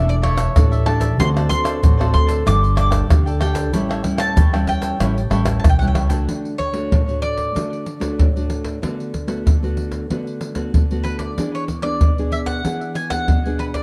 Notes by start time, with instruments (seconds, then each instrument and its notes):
Already playing: upright bass E1, nylon-string guitar E3 A3 D4 A4
0.08 mandolin D5, muted cavaquinho stroke, pandeiro, shaker
0.22 cavaquinho D4 A4 D5 E5, mandolin C#5, pandeiro, tamborim, surdo
0.37 cavaquinho A4 E5, pandeiro, tamborim, shaker, surdo
0.56 upright bass A1, nylon-string guitar E3 A3 D4 A4, pandeiro, tamborim, shaker, surdo
0.72 cavaquinho A4 D5 E5, pandeiro, shaker
0.86 nylon-string guitar A3 D4 A4, cavaquinho D4 A4 D5 E5, mandolin A5, pandeiro, tamborim
1.00 cavaquinho A4 D5 E5, pandeiro, shaker, surdo
1.19 upright bass D2, nylon-string guitar D3 C4 F#4 A4, cavaquinho F#4 A4 C5 D5, mandolin C6, pandeiro, shaker, surdo
1.36 nylon-string guitar C4 F#4 A4, cavaquinho A4 C5 D5, pandeiro, tamborim, shaker
1.49 nylon-string guitar C4 F#4 A4, mandolin C6, pandeiro, shaker, surdo
1.64 cavaquinho A4 C5 D5, pandeiro, tamborim, shaker
1.83 upright bass A1, nylon-string guitar A2, cavaquinho F#4 A4 C5 D5, pandeiro, shaker, surdo
1.98 nylon-string guitar C4 F#4 A4, cavaquinho A4 C5 D5, pandeiro, tamborim, shaker
2.14 upright bass D2, mandolin C6, pandeiro
2.27 cavaquinho A4 C5 D5, pandeiro, shaker, surdo
2.45 upright bass G1, nylon-string guitar G3 D4 G4 A4, cavaquinho D4 A4 D5 G5, mandolin D6, pandeiro, tamborim, shaker, surdo
2.63 muted cavaquinho stroke, pandeiro, shaker
2.76 cavaquinho D4 A4 D5 G5, mandolin D6, pandeiro, tamborim, shaker, surdo
2.90 cavaquinho A4 D5 G5, pandeiro, tamborim, shaker, surdo
3.09 upright bass D2, nylon-string guitar D3 D4 G4 A4, pandeiro, tamborim, shaker, surdo
3.26 cavaquinho A4 D5 G5, pandeiro, shaker
3.39 cavaquinho D4 A4 D5 G5, nylon-string guitar D4 G4 A4, mandolin G5, pandeiro, tamborim
3.53 cavaquinho A4 D5 G5, pandeiro, shaker, surdo
3.73 upright bass A1, nylon-string guitar A2 G3 C#4 E4, cavaquinho E4 A4 C#5 G5, pandeiro, shaker, surdo
3.89 cavaquinho A4 C#5 G5, pandeiro, tamborim, shaker
4.03 nylon-string guitar G3 C#4 E4, muted cavaquinho stroke, pandeiro, surdo
4.17 cavaquinho A4 C#5 G5, mandolin A5, pandeiro, tamborim, shaker
4.36 upright bass E2, nylon-string guitar E3, cavaquinho E4 A4 C#5 G5, pandeiro, shaker, surdo
4.53 nylon-string guitar G3 C#4 E4, cavaquinho A4 C#5 G5, pandeiro, tamborim, shaker
4.67 upright bass E2, mandolin G5, pandeiro
4.81 cavaquinho A4 C#5 G5, pandeiro, shaker, surdo
5.00 upright bass A1, nylon-string guitar A2 G3 C#4 E4, cavaquinho E4 A4 C#5 G5, pandeiro, tamborim, shaker, surdo
5.18 muted cavaquinho stroke, pandeiro, shaker
5.30 upright bass A1, nylon-string guitar G3 C#4 E4, cavaquinho E4 A4 C#5 G5, pandeiro, tamborim
5.45 cavaquinho A4 C#5 G5, pandeiro, tamborim, shaker, surdo
5.60 mandolin A5
5.64 upright bass B1, nylon-string guitar E3, pandeiro, tamborim, shaker, surdo
5.69 mandolin G5
5.79 nylon-string guitar G3 C#4 E4, cavaquinho A4 C#5 G5, mandolin F#5, pandeiro, shaker
5.88 mandolin G5
5.94 upright bass C#2, cavaquinho E4 A4 C#5 G5, pandeiro, tamborim
6.09 nylon-string guitar A3 D4 F#4, cavaquinho A4 C#5 G5, pandeiro, shaker, surdo
6.28 nylon-string guitar D3, pandeiro, surdo
6.45 pandeiro
6.58 mandolin C#5, pandeiro, surdo
6.73 nylon-string guitar A3 D4 F#4, pandeiro
6.91 nylon-string guitar A2, pandeiro, surdo
7.08 nylon-string guitar A3 D4 F#4, pandeiro
7.22 mandolin D5, pandeiro
7.37 pandeiro, surdo
7.54 nylon-string guitar D3 A3 D4 F#4, pandeiro, surdo
7.73 pandeiro
7.86 pandeiro
8.00 nylon-string guitar A3 D4 F#4, pandeiro, surdo
8.19 nylon-string guitar A2, pandeiro, surdo
8.36 nylon-string guitar A3 D4 F#4, pandeiro
8.50 pandeiro
8.65 pandeiro, surdo
8.82 nylon-string guitar D3 A3 B3 F#4, pandeiro, surdo
9.00 pandeiro
9.14 pandeiro, surdo
9.27 nylon-string guitar A3 B3 F#4, pandeiro
9.46 nylon-string guitar D3, pandeiro, surdo
9.63 nylon-string guitar A3 B3 F#4, pandeiro
9.77 pandeiro
9.92 pandeiro, surdo
10.10 nylon-string guitar D3 A3 B3 F#4, pandeiro, surdo
10.27 pandeiro
10.41 pandeiro
10.55 nylon-string guitar A3 B3 F#4, pandeiro, surdo
10.74 nylon-string guitar D3, pandeiro, surdo
10.91 nylon-string guitar A3 B3 F#4, pandeiro
11.04 mandolin B4, pandeiro
11.19 mandolin D5, pandeiro, surdo
11.38 nylon-string guitar E3 B3 D4 G#4, pandeiro, surdo
11.55 mandolin C#5, pandeiro
11.68 pandeiro, surdo
11.82 nylon-string guitar B3 D4 G#4, mandolin D5, pandeiro
12.01 nylon-string guitar B2, pandeiro, surdo
12.18 nylon-string guitar B3 D4 G#4, pandeiro
12.32 mandolin E5, pandeiro
12.46 mandolin F#5, pandeiro, surdo
12.65 nylon-string guitar E3 B3 D4 G#4, pandeiro, surdo
12.81 pandeiro
12.95 mandolin G#5, pandeiro
13.10 nylon-string guitar B3 D4 G#4, mandolin F#5, pandeiro, surdo
13.28 nylon-string guitar B2, pandeiro, surdo
13.46 nylon-string guitar B3 D4 G#4, pandeiro
13.59 mandolin B4, pandeiro
13.74 mandolin D5, pandeiro, surdo